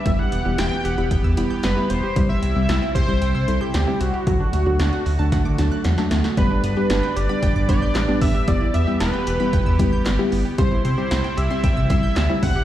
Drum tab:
HH |x-x-x-x-x-x-x-x-|x-x-x-x-x-x-x-x-|x-x-x-o-x-x-x-x-|x-x-x-x-x-x-x-o-|
CP |----------------|----------------|----------------|------------x---|
SD |----o-------o---|----o-------o---|----o---o-o-oooo|----o-------o---|
BD |o-------o-------|o-----o---------|o-------o-------|o-------o-o---o-|

HH |x-x-x-x-x-x-x-o-|x-x-x-x-x-x-x-o-|
CP |------------x---|------------x---|
SD |----o-------o---|----o-------o---|
BD |o-------o-o-----|o-------o-o---o-|